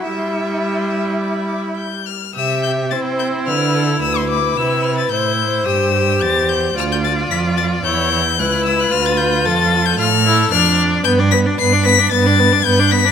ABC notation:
X:1
M:4/4
L:1/16
Q:1/4=110
K:C
V:1 name="Violin"
e' c' e' c' e' c' e' c' d' b d' b g'2 f'2 | e'2 g'2 a'2 g'2 f'4 e' c' d'2 | e'2 f' a' g'4 e'4 a'2 g'2 | f' g' a'2 b'2 a'2 g'4 ^f'2 e' f' |
f' a' g'2 a'3 g' f'4 f'2 z2 | g'2 b'2 c''2 b'2 a'4 g'2 b'2 |]
V:2 name="Violin"
e12 z4 | e4 c4 B2 A2 B4- | B4 c2 c6 c4 | d8 ^c2 c2 B4- |
B4 A4 A4 d4 | B d B d B d B d B d B d B d B d |]
V:3 name="Viola"
G,12- G,2 z2 | G4 E12 | E4 E4 G2 G6 | F8 E4 E4 |
F8 F2 E2 D4 | B, D B, D B, D B, D B, D B, D B, D B, D |]
V:4 name="Cello" clef=bass
E12 z4 | C,4 C4 D,4 D,,4 | C,4 A,,4 G,,4 E,,4 | D,,4 F,,4 E,,4 ^C,,4 |
D,,4 F,,4 A,,4 F,,4 | G,,4 G,,4 G,,4 G,,4 |]